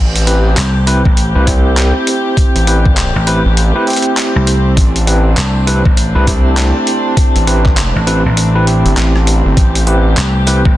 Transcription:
0.00 0.55 A1 loud
0.00 10.77 A3 medium
0.00 10.77 C4 medium
0.00 4.77 G4 medium
0.16 closed hi-hat medium
0.27 0.49 C4 medium
0.27 0.49 E4 medium
0.27 0.49 G4 medium
0.27 0.49 B4 medium
0.27 closed hi-hat medium
0.57 1.03 C2 medium
0.57 clap loud
0.57 closed hi-hat medium
0.87 1.02 C4 loud
0.87 1.02 E4 medium
0.87 1.02 G4 medium
0.87 1.02 B4 loud
0.87 closed hi-hat medium
1.05 1.33 A1 medium
1.05 kick loud
1.17 closed hi-hat medium
1.35 1.93 C2 medium
1.35 1.45 C4 medium
1.35 1.45 E4 medium
1.35 1.45 G4 medium
1.35 1.45 B4 loud
1.47 2.64 C4 medium
1.47 2.64 E4 medium
1.47 2.64 G4 medium
1.47 kick medium
1.47 cross-stick soft
1.47 closed hi-hat medium
1.77 clap loud
1.77 closed hi-hat medium
2.07 closed hi-hat medium
2.37 kick loud
2.37 closed hi-hat medium
2.55 3.13 A1 loud
2.55 closed hi-hat medium
2.67 2.89 C4 medium
2.67 2.89 E4 medium
2.67 2.89 G4 medium
2.67 2.89 B4 medium
2.67 closed hi-hat medium
2.86 kick loud
2.97 clap loud
2.97 closed hi-hat medium
3.16 3.43 A1 medium
3.27 3.42 C4 medium
3.27 3.42 E4 medium
3.27 3.42 G4 medium
3.27 3.42 B4 loud
3.27 closed hi-hat medium
3.45 3.73 A1 loud
3.57 closed hi-hat medium
3.75 3.85 C4 medium
3.75 3.85 E4 medium
3.75 3.85 G4 medium
3.75 3.85 B4 loud
3.87 5.04 C4 medium
3.87 5.04 E4 medium
3.87 5.04 G4 medium
3.87 5.04 C5 medium
3.87 closed hi-hat soft
3.90 closed hi-hat soft
3.93 closed hi-hat soft
3.96 closed hi-hat soft
3.96 closed hi-hat medium
4.02 closed hi-hat medium
4.17 clap loud
4.17 closed hi-hat medium
4.36 4.75 C2 medium
4.47 closed hi-hat medium
4.77 5.35 A1 loud
4.77 9.57 D4 medium
4.77 kick loud
4.77 closed hi-hat medium
4.96 closed hi-hat medium
5.07 5.29 C4 medium
5.07 5.29 E4 medium
5.07 5.29 G4 medium
5.07 5.29 B4 medium
5.07 closed hi-hat medium
5.37 5.83 C2 loud
5.37 clap loud
5.37 closed hi-hat medium
5.67 5.82 C4 loud
5.67 5.82 E4 medium
5.67 5.82 G4 medium
5.67 5.82 B4 loud
5.67 closed hi-hat medium
5.85 6.13 A1 medium
5.85 kick loud
5.97 closed hi-hat medium
6.15 6.73 C2 loud
6.15 6.25 C4 medium
6.15 6.25 E4 medium
6.15 6.25 G4 medium
6.15 6.25 B4 loud
6.27 7.44 C4 medium
6.27 7.44 E4 medium
6.27 7.44 G4 medium
6.27 7.44 C5 medium
6.27 kick medium
6.27 cross-stick soft
6.27 closed hi-hat medium
6.57 clap loud
6.57 closed hi-hat medium
6.87 closed hi-hat medium
7.17 kick loud
7.17 closed hi-hat medium
7.36 7.93 A1 loud
7.36 closed hi-hat medium
7.47 7.69 C4 medium
7.47 7.69 E4 medium
7.47 7.69 G4 medium
7.47 7.69 B4 medium
7.47 closed hi-hat medium
7.65 kick loud
7.65 clap soft
7.77 clap loud
7.77 closed hi-hat medium
7.96 8.23 A1 medium
8.07 8.22 C4 loud
8.07 8.22 E4 medium
8.07 8.22 G4 medium
8.07 8.22 B4 loud
8.07 closed hi-hat medium
8.26 8.83 A1 loud
8.37 closed hi-hat medium
8.55 8.65 C4 medium
8.55 8.65 E4 medium
8.55 8.65 G4 medium
8.55 8.65 B4 loud
8.67 9.84 C4 medium
8.67 9.84 E4 medium
8.67 9.84 G4 medium
8.67 9.84 C5 medium
8.67 closed hi-hat medium
8.85 8.95 G1 loud
8.85 closed hi-hat soft
8.97 9.43 A1 loud
8.97 clap loud
8.97 closed hi-hat medium
9.16 cross-stick soft
9.27 closed hi-hat medium
9.45 9.55 G1 medium
9.57 10.15 A1 loud
9.57 10.77 G4 medium
9.57 kick loud
9.57 closed hi-hat medium
9.75 closed hi-hat medium
9.87 10.09 C4 medium
9.87 10.09 E4 medium
9.87 10.09 G4 medium
9.87 10.09 B4 medium
9.87 closed hi-hat medium
10.17 10.63 C2 medium
10.17 clap loud
10.17 closed hi-hat medium
10.47 10.62 C4 medium
10.47 10.62 E4 medium
10.47 10.62 G4 medium
10.47 10.62 B4 loud
10.47 closed hi-hat medium
10.47 shaker medium
10.65 10.77 A1 medium
10.65 kick loud

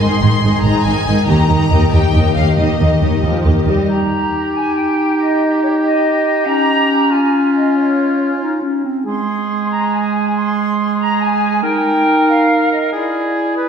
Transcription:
0.00 0.08 G#1 soft
0.00 0.08 G#2 soft
0.00 0.21 D#3 soft
0.00 0.22 D#4 soft
0.00 0.21 G#4 soft
0.00 0.21 D#5 soft
0.00 0.64 C6 medium
0.21 0.29 G#1 soft
0.21 0.30 G#2 soft
0.21 0.42 D#3 soft
0.21 0.42 D#4 soft
0.21 0.42 G#4 soft
0.21 0.42 D#5 soft
0.42 0.50 G#1 soft
0.42 0.52 G#2 soft
0.42 0.64 D#3 soft
0.42 0.64 D#4 soft
0.42 0.64 G#4 soft
0.42 0.64 D#5 soft
0.63 0.71 G#1 soft
0.63 0.73 G#2 soft
0.63 0.86 D#3 soft
0.63 0.86 D#4 soft
0.63 0.83 G#4 soft
0.63 0.83 D#5 soft
0.63 0.85 A#5 medium
0.83 0.93 G#1 soft
0.83 0.94 G#2 soft
0.83 1.08 D#3 soft
0.83 1.05 G#4 soft
0.83 1.05 D#5 soft
0.83 1.27 G#5 medium
0.87 1.07 D#4 soft
1.06 1.14 G#1 soft
1.06 1.16 G#2 soft
1.06 1.28 D#3 soft
1.06 1.28 D#4 soft
1.06 1.28 G#4 soft
1.06 1.26 D#5 soft
1.27 1.36 D#2 soft
1.27 1.37 D#2 soft
1.27 1.48 D#3 soft
1.27 1.48 D#4 soft
1.27 1.47 G4 soft
1.27 1.48 D#5 soft
1.27 1.91 A#5 medium
1.48 1.57 D#2 soft
1.48 1.58 D#2 soft
1.48 1.70 D#3 soft
1.48 1.70 D#4 soft
1.48 1.69 G4 soft
1.48 1.69 D#5 soft
1.70 1.78 D#2 soft
1.70 1.80 D#2 soft
1.70 1.91 D#3 soft
1.70 1.91 D#4 soft
1.70 1.90 G4 soft
1.70 1.90 D#5 soft
1.91 1.99 D#2 soft
1.91 2.01 D#2 soft
1.91 2.13 D#3 soft
1.91 2.13 D#4 soft
1.91 2.12 G4 soft
1.91 2.12 D#5 soft
1.91 2.36 G5 medium
2.13 2.21 D#2 soft
2.13 2.24 D#2 soft
2.13 2.34 D#3 soft
2.13 2.34 D#4 soft
2.13 2.34 G4 soft
2.13 2.34 D#5 soft
2.35 2.43 D#2 soft
2.35 2.45 D#2 soft
2.35 2.56 D#3 soft
2.35 2.56 D#4 soft
2.35 2.56 G4 soft
2.35 2.57 D#5 soft
2.35 2.57 F5 medium
2.57 2.65 D#2 soft
2.57 2.67 D#2 soft
2.57 2.78 D#3 soft
2.57 2.77 D#4 soft
2.57 2.79 G4 soft
2.57 3.22 D#5 soft
2.57 2.78 D#5 soft
2.79 2.87 D#2 soft
2.79 2.89 D#2 soft
2.79 3.00 D#3 soft
2.79 3.00 D#4 soft
2.79 3.00 G4 soft
2.79 3.00 D#5 soft
3.01 3.09 D#2 soft
3.01 3.10 D#2 soft
3.01 3.23 D#3 soft
3.01 3.23 D#4 soft
3.01 3.22 G4 soft
3.01 3.21 D#5 soft
3.22 3.31 D#2 soft
3.22 3.32 D#2 soft
3.22 3.43 F3 soft
3.22 3.41 G4 soft
3.22 3.42 D#5 soft
3.43 3.54 D#2 soft
3.43 3.67 D#3 soft
3.43 3.65 G4 soft
3.43 3.65 D#5 soft
3.66 3.75 D#2 soft
3.66 3.89 G3 soft
3.66 3.88 G4 soft
3.66 3.88 D#5 soft
3.88 6.42 D#4 soft
3.88 7.12 G4 soft
3.88 4.49 A#5 medium
4.53 4.74 G#5 medium
4.76 5.17 G5 medium
5.18 5.60 D#5 medium
5.61 5.67 C#5 medium
5.83 6.46 D#5 medium
6.46 8.32 C#4 medium
6.46 7.11 A#5 medium
7.11 8.84 F4 soft
7.11 7.54 G#5 medium
7.55 7.76 D#5 soft
7.75 8.39 C#5 medium
8.40 8.60 D#4 soft
8.62 8.83 C#4 soft
8.84 9.05 C4 soft
9.06 11.65 G#3 medium
9.06 11.60 G#4 soft
9.06 9.66 C6 medium
9.70 9.91 A#5 medium
9.92 10.35 G#5 medium
10.34 10.98 C6 medium
10.99 11.20 A#5 medium
11.20 11.63 G#5 medium
11.62 12.75 D#4 medium
11.62 12.90 A#4 medium
11.62 12.26 G5 medium
12.28 12.70 F5 medium
12.71 12.92 D#5 medium
12.92 13.69 E4 soft
12.92 13.52 G#4 soft
12.92 13.69 D5 medium
13.57 13.69 B4 soft

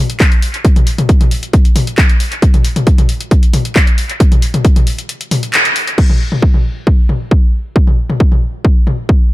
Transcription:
0.10 closed hi-hat soft
0.20 kick loud
0.20 clap loud
0.20 closed hi-hat medium
0.32 closed hi-hat soft
0.42 open hi-hat medium
0.54 closed hi-hat soft
0.65 kick loud
0.65 closed hi-hat medium
0.76 closed hi-hat medium
0.76 mid tom loud
0.87 open hi-hat loud
0.98 closed hi-hat soft
0.98 mid tom loud
1.09 kick loud
1.09 closed hi-hat medium
1.21 closed hi-hat soft
1.21 mid tom loud
1.31 open hi-hat medium
1.43 closed hi-hat medium
1.53 kick loud
1.53 closed hi-hat medium
1.65 closed hi-hat medium
1.76 open hi-hat loud
1.76 mid tom loud
1.87 closed hi-hat soft
1.98 kick loud
1.98 clap loud
1.98 closed hi-hat medium
2.09 closed hi-hat medium
2.20 open hi-hat medium
2.32 closed hi-hat soft
2.42 kick loud
2.42 closed hi-hat medium
2.54 closed hi-hat medium
2.54 mid tom medium
2.65 open hi-hat loud
2.76 closed hi-hat medium
2.76 mid tom medium
2.87 kick loud
2.87 closed hi-hat medium
2.98 closed hi-hat medium
2.98 mid tom loud
3.09 open hi-hat medium
3.21 closed hi-hat medium
3.31 kick loud
3.31 closed hi-hat medium
3.43 closed hi-hat medium
3.54 open hi-hat loud
3.54 mid tom loud
3.65 closed hi-hat soft
3.76 kick loud
3.76 clap loud
3.76 closed hi-hat medium
3.87 closed hi-hat medium
3.98 open hi-hat medium
4.10 closed hi-hat medium
4.20 kick loud
4.20 closed hi-hat medium
4.32 closed hi-hat medium
4.32 mid tom medium
4.42 open hi-hat loud
4.54 closed hi-hat medium
4.54 mid tom loud
4.65 kick loud
4.65 closed hi-hat medium
4.76 closed hi-hat medium
4.76 mid tom loud
4.87 open hi-hat medium
4.99 closed hi-hat medium
5.09 closed hi-hat medium
5.21 closed hi-hat medium
5.31 open hi-hat loud
5.31 mid tom medium
5.43 closed hi-hat medium
5.54 clap loud
5.54 closed hi-hat medium
5.65 closed hi-hat medium
5.76 open hi-hat medium
5.87 closed hi-hat soft
5.98 kick loud
5.98 crash medium
6.10 mid tom medium
6.32 mid tom medium
6.42 kick loud
6.54 mid tom medium
6.87 kick loud
7.09 mid tom medium
7.31 kick loud
7.76 kick loud
7.87 mid tom medium
8.10 mid tom medium
8.20 kick loud
8.32 mid tom medium
8.65 kick loud
8.87 mid tom medium
9.09 kick loud

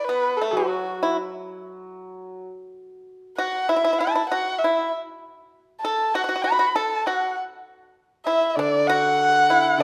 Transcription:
0.05 0.38 B4 medium
0.09 0.37 B3 medium
0.37 0.53 A4 medium
0.41 0.54 A3 medium
0.51 2.42 F#3 medium
0.51 1.15 F#4 medium
0.57 0.99 F#3 medium
1.03 1.16 E4 medium
3.38 3.67 F#4 medium
3.38 3.71 F#5 medium
3.69 3.75 E4 medium
3.69 4.00 E5 medium
3.76 3.83 E4 medium
3.84 3.91 E4 medium
3.93 3.99 E4 medium
3.99 4.06 E4 medium
3.99 4.29 A5 medium
4.07 4.13 E4 soft
4.15 4.21 E4 medium
4.30 4.59 F#4 medium
4.30 4.60 F#5 medium
4.59 4.90 E5 medium
4.64 4.91 E4 medium
5.81 6.12 A4 medium
5.81 6.16 A5 medium
6.15 6.21 F#4 medium
6.15 6.44 F#5 medium
6.24 6.28 F#4 medium
6.29 6.34 F#4 medium
6.36 6.42 F#4 medium
6.42 6.50 F#4 medium
6.42 6.67 B5 medium
6.52 6.58 F#4 soft
6.59 6.65 F#4 medium
6.67 6.76 B5 medium
6.75 7.04 A4 medium
6.75 7.08 A5 medium
7.07 7.35 F#4 medium
7.07 7.36 F#5 medium
8.26 8.55 E4 medium
8.26 8.50 E5 medium
8.50 8.57 E5 medium
8.56 9.77 D3 medium
8.56 8.87 D4 medium
8.56 8.89 D5 medium
8.87 9.46 F#4 medium
8.87 9.82 F#5 loud
9.50 9.79 E4 medium
9.78 9.83 D3 medium

